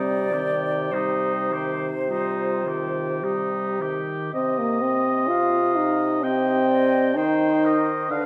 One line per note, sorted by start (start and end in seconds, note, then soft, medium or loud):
0.00 3.98 C3 soft
0.00 0.34 G3 soft
0.00 0.36 C4 soft
0.00 0.35 D#4 soft
0.00 0.93 D5 medium
0.33 0.94 D#3 soft
0.33 0.93 D#4 soft
0.33 0.96 G4 soft
0.91 1.53 G3 soft
0.91 2.06 D#4 soft
0.91 1.55 D#4 soft
0.91 3.23 C5 soft
1.52 1.92 D#3 soft
1.52 1.93 G4 soft
2.08 2.67 G3 soft
2.08 2.69 D#4 soft
2.08 3.26 F4 soft
2.66 3.24 D#3 soft
2.66 3.26 G4 soft
3.22 3.82 G3 soft
3.22 3.83 D#4 soft
3.22 4.33 G4 soft
3.80 4.33 D#3 soft
3.80 4.33 G4 soft
4.33 7.18 C3 medium
4.33 4.60 C4 medium
4.33 5.32 D#5 soft
4.33 6.25 D#5 medium
4.58 4.83 A#3 medium
4.82 5.30 C4 medium
5.28 5.77 F4 medium
5.28 6.07 F5 soft
5.76 6.24 D#4 medium
6.22 7.18 C4 medium
6.22 6.66 G4 soft
6.22 6.71 D#5 soft
6.22 7.17 G5 soft
6.69 7.15 D5 soft
6.69 7.19 D#5 medium
7.16 8.10 D#3 soft
7.16 7.93 D#4 medium
7.16 8.11 C5 soft
7.16 7.68 C5 medium
7.16 7.67 G5 soft
7.65 8.12 A#4 medium
7.65 8.13 D#5 soft
8.09 8.26 D3 medium
8.09 8.26 D4 medium
8.09 8.26 B4 soft
8.09 8.26 B4 medium
8.09 8.26 F5 soft